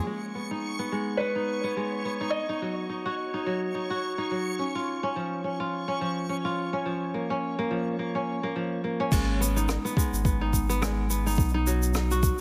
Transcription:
Already playing: F3 A#3 C#4 G#4
0.05 G#3 C#5 C#6
0.35 B3
0.51 D#4
0.79 B3
0.92 G#3
1.17 B3 B4
1.36 D#4
1.64 B3
1.77 G#3
2.05 B3
2.21 D#4
2.30 D#5
2.49 D#4
2.62 F#3
2.89 D#4
3.05 F#4
3.34 D#4
3.46 F#3
3.74 D#4
3.90 F#4
4.18 D#4
4.31 F#3
4.59 C#4
4.75 F4
5.03 C#4
5.16 F3
5.44 C#4
5.60 F4
5.88 C#4
6.01 F3
6.29 C#4
6.45 F4
6.73 C#4
6.86 F3
7.14 A#3
7.30 C#4
7.59 A#3
7.71 F3
7.99 A#3
8.15 C#4
8.43 A#3
8.56 F3
8.84 A#3
9.00 C#4
9.12 G#1 G#3, kick, crash, shaker
9.40 B3, shaker
9.56 D#4, shaker
9.69 cross-stick, shaker
9.85 B3, shaker
9.97 G#3, kick, shaker
10.13 G#1, shaker
10.25 B3, kick, shaker
10.41 D#4
10.53 kick, shaker
10.69 B3, shaker
10.81 G#3, cross-stick, shaker
11.10 B3, shaker
11.26 D#4, shaker
11.30 shaker
11.35 B1, kick, shaker
11.39 shaker
11.44 shaker
11.49 shaker
11.54 D#4
11.67 F#3, shaker
11.83 shaker
11.94 D#4, cross-stick, shaker
12.11 F#4, shaker
12.23 kick, shaker

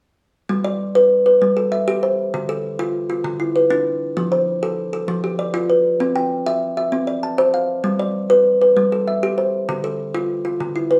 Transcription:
0.49 G3
0.64 D5
0.95 B4
1.26 B4
1.42 G3
1.57 A4
1.72 E5
1.88 G4
2.03 C5
2.34 D3
2.49 A4
2.79 F4
3.10 F4
3.24 D3
3.40 E4
3.56 B4
3.70 D4
4.17 F3
4.32 C5
4.63 A4
4.93 A4
5.08 F3
5.24 G4
5.39 D5
5.54 F4
5.70 B4
6.00 C4
6.16 G5
6.46 E5
6.77 E5
6.92 C4
7.07 D5
7.23 A5
7.38 C5
7.54 F5
7.84 G3
7.99 D5
8.30 B4
8.62 B4
8.77 G3
8.92 A4
9.08 E5
9.23 G4
9.38 C5
9.69 D3
9.84 A4
10.14 F4
10.45 F4
10.60 D3
10.76 E4
10.91 B4

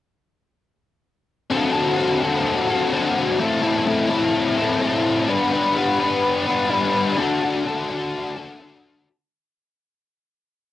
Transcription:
1.50 D3 C4 F#4 A4
1.73 C4 F#4 A4
1.96 D3 C4 F#4 A4
2.21 C4 F#4 A4
2.69 C4 F#4 A4
2.92 D3 C4 F#4 A4
3.38 A2 E3 A3 C4 E4 A4
3.62 A3 C4 E4 A4
3.85 A2 E3 A3 C4 E4 A4
4.09 A3 C4 E4 A4
4.57 A3 C4 E4 A4
4.80 A3 C4 E4 A4
5.28 G3 B3 D4 B4
5.52 B3 D4 B4
5.75 G3 B3 D4 B4
5.99 B3 D4 B4
6.46 B3 D4 B4
6.70 G3 B3 D4 B4
7.17 D3 D4 F#4 A4
7.41 D4 F#4 A4
7.65 D3 D4 F#4 A4
7.89 D4 F#4 A4
8.36 D4 F#4 A4
8.60 D3 D4 F#4 A4

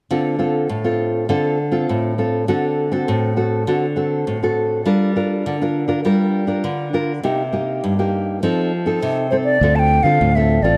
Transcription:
0.11 D3 C4 F4 A4
0.39 C4 F4 A4
0.69 A2
0.84 C4 F4 A4
1.29 D3 C4 F4 A4
1.71 C4 F4 A4
1.89 A2
2.18 C4 F4 A4
2.48 D3 C4 F#4 A4
2.92 C4 F#4 A4
3.08 A2
3.36 C4 F#4 A4
3.67 D3 C4 F#4 A4
3.96 C4 F#4 A4
4.27 A2
4.43 C4 F#4 A4
4.86 G3 D4 F4 A#4
5.16 D4 F4 A#4
5.46 D3
5.62 D4 F4 A#4
5.88 D4 F4 A#4
6.05 G3 D4 F4 A#4
6.47 D4 F4 A#4
6.64 D3
6.93 D4 F4 A#4
7.23 C3 A#3 D#4 G4
7.53 A#3 D#4 G4
7.84 G2
7.99 A#3 D#4 G4
8.43 F3 C4 D#4 A4
8.86 C4 D#4 A4
9.02 C3
9.30 C4 D#4 A4 C5
9.44 D5
9.61 D2 D3 C4 F4 A4
9.76 G5 A5
10.03 D3 C4 F4 A4 F5
10.21 D2 A2
10.35 C4 F4 A4 E5
10.62 A1 C4 F4 A4 D5

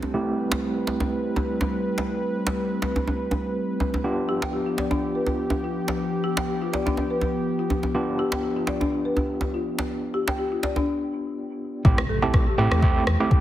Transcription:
Already playing: G3 A3 C4 E4 G4 A4
0.03 djembe tone
0.14 A3 C4 E4 G4 B4
0.52 djembe slap
0.87 djembe slap
1.00 djembe tone
1.36 djembe tone
1.61 djembe tone
1.98 djembe slap
2.47 djembe slap
2.82 djembe slap
2.96 djembe tone
3.07 djembe tone
3.31 djembe tone
3.80 djembe tone
3.94 djembe tone
4.04 F3 B3 D4 F4 G4
4.29 G4
4.42 G5, djembe slap
4.53 G4
4.66 F4
4.77 D5, djembe slap
4.91 D4, djembe tone
5.15 B4
5.27 djembe tone
5.50 djembe tone
5.64 F4
5.88 djembe slap
6.24 G4
6.37 G5, djembe slap
6.48 G4
6.62 F4
6.73 D5, djembe slap
6.86 D4, djembe tone
6.97 djembe tone
7.10 B4
7.21 djembe tone
7.59 F4
7.70 djembe tone
7.83 djembe tone
7.95 B3 D4 F4 G4
8.19 G4
8.32 G5, djembe slap
8.43 G4
8.56 F4
8.67 D5, djembe slap
8.81 D4, djembe tone
9.05 B4
9.17 djembe tone
9.41 djembe tone
9.54 F4
9.79 djembe slap
10.14 G4
10.27 G5, djembe slap
10.39 G4
10.52 F4
10.63 D5, djembe slap
10.76 D4, djembe tone
11.85 A1 C3 A3 C4 E4 G4, kick, impact
11.98 cross-stick
12.09 A4
12.22 A3 C4 E4 G4 A5
12.34 A4, kick, cross-stick
12.47 G4
12.58 A2 A3 C4 E4 G4 E5
12.71 E2 E4, cross-stick
12.82 A3 C4 E4 G4, kick
12.95 C5
13.07 E2, cross-stick
13.20 A3 C4 E4 G4
13.31 kick

